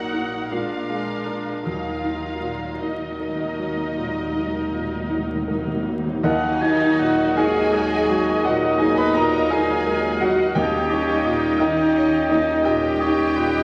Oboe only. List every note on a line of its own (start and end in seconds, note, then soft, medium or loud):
0.00 0.48 A#4 soft
0.51 1.62 A#4 soft
1.65 2.78 A#4 soft
2.79 5.85 A#4 soft
6.24 6.63 F#5 medium
6.61 6.98 G#5 medium
6.99 7.36 F#5 medium
7.37 7.75 F5 medium
7.73 8.11 D#5 medium
8.09 8.46 C#5 medium
8.44 9.52 D#5 medium
9.51 10.55 F5 medium
10.56 10.92 D#5 medium
10.90 11.27 C#5 medium
11.25 11.61 D#5 medium
11.59 12.67 G5 medium
12.65 13.02 D#5 medium
13.01 13.38 C#5 medium
13.36 13.63 B4 medium